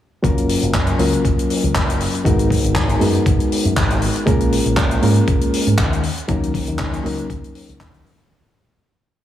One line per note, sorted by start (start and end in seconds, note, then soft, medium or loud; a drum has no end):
0.22 0.54 F#1 loud
0.22 0.96 F#3 medium
0.22 0.96 A#3 medium
0.22 0.96 C#4 medium
0.22 0.97 F4 medium
0.22 0.97 A#4 loud
0.22 kick loud
0.22 closed hi-hat medium
0.38 closed hi-hat medium
0.49 open hi-hat loud
0.62 0.92 F#1 loud
0.62 closed hi-hat medium
0.74 kick loud
0.74 clap loud
0.74 closed hi-hat medium
0.87 closed hi-hat medium
0.98 1.15 C#2 medium
0.98 2.22 F#3 medium
0.98 2.22 A#3 medium
0.98 2.23 C#4 medium
0.98 2.23 F4 medium
0.98 2.23 A#4 medium
0.98 open hi-hat loud
1.13 closed hi-hat medium
1.25 1.33 F#1 medium
1.25 kick loud
1.25 closed hi-hat medium
1.39 closed hi-hat medium
1.50 open hi-hat loud
1.63 1.70 C#2 medium
1.63 closed hi-hat medium
1.75 2.05 F#1 medium
1.75 kick loud
1.75 clap loud
1.75 closed hi-hat medium
1.90 closed hi-hat medium
2.00 open hi-hat loud
2.15 closed hi-hat medium
2.24 2.56 G#1 loud
2.24 2.98 G#3 medium
2.24 2.98 B3 medium
2.24 2.98 D#4 medium
2.24 2.98 F#4 medium
2.24 2.99 A#4 loud
2.24 kick loud
2.24 closed hi-hat medium
2.39 closed hi-hat medium
2.50 kick medium
2.50 open hi-hat loud
2.64 2.94 G#1 loud
2.64 closed hi-hat medium
2.75 kick loud
2.75 clap loud
2.75 closed hi-hat medium
2.89 closed hi-hat soft
2.99 3.17 F#2 loud
2.99 4.24 G#3 medium
2.99 4.24 B3 medium
2.99 4.24 D#4 medium
2.99 4.24 F#4 medium
2.99 4.25 A#4 medium
2.99 open hi-hat loud
3.15 closed hi-hat medium
3.26 3.34 G#1 medium
3.26 kick loud
3.26 closed hi-hat medium
3.40 closed hi-hat soft
3.52 open hi-hat loud
3.65 3.72 F#2 medium
3.65 closed hi-hat medium
3.76 4.07 G#1 medium
3.76 kick loud
3.76 clap loud
3.76 closed hi-hat medium
3.90 closed hi-hat medium
4.02 open hi-hat loud
4.16 closed hi-hat medium
4.26 4.57 A#1 loud
4.26 4.99 G#3 medium
4.26 5.00 A#3 medium
4.26 5.00 C#4 medium
4.26 5.00 F4 medium
4.26 5.00 A#4 loud
4.26 kick loud
4.26 closed hi-hat medium
4.40 closed hi-hat medium
4.52 open hi-hat loud
4.65 4.95 A#1 loud
4.65 closed hi-hat medium
4.77 kick loud
4.77 clap loud
4.77 closed hi-hat medium
4.91 closed hi-hat medium
5.02 5.18 G#2 loud
5.02 6.02 G#3 medium
5.02 6.02 A#3 medium
5.02 6.02 C#4 medium
5.02 6.03 F4 medium
5.02 6.03 A#4 medium
5.02 open hi-hat loud
5.16 closed hi-hat soft
5.27 5.36 A#1 medium
5.27 kick loud
5.27 closed hi-hat medium
5.41 closed hi-hat medium
5.54 open hi-hat loud
5.67 5.74 G#2 medium
5.67 closed hi-hat medium
5.78 6.09 D#2 medium
5.78 kick loud
5.78 clap loud
5.78 closed hi-hat medium
5.93 closed hi-hat medium
6.03 open hi-hat medium
6.17 closed hi-hat medium
6.28 6.59 D#2 loud
6.28 7.01 F#3 medium
6.28 7.01 A#3 medium
6.28 7.02 C#4 medium
6.28 7.02 D#4 medium
6.28 7.02 A#4 loud
6.28 kick loud
6.28 closed hi-hat medium
6.43 closed hi-hat medium
6.54 kick medium
6.54 open hi-hat loud
6.67 6.97 D#2 loud
6.67 closed hi-hat medium
6.79 kick loud
6.79 clap loud
6.79 closed hi-hat medium
6.93 closed hi-hat medium
7.04 7.21 C#2 medium
7.04 8.27 F#3 medium
7.04 8.28 A#3 medium
7.04 8.28 C#4 medium
7.04 8.28 D#4 medium
7.04 8.28 A#4 medium
7.04 open hi-hat loud
7.18 closed hi-hat medium
7.30 7.38 D#2 medium
7.30 kick loud
7.30 closed hi-hat medium
7.44 closed hi-hat medium
7.55 open hi-hat loud
7.69 7.76 C#2 medium
7.69 closed hi-hat medium
7.80 8.11 D#2 medium
7.80 kick loud
7.80 clap loud
7.80 closed hi-hat medium
7.94 closed hi-hat medium
8.06 open hi-hat loud
8.20 closed hi-hat medium